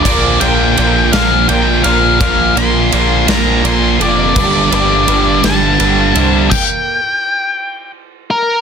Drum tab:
CC |x-----|------|x-----|x-----|
RD |xxxxxx|xxxxxx|-xxxxx|------|
SD |---o--|---o--|---o--|------|
BD |o-----|o-----|o-----|o-----|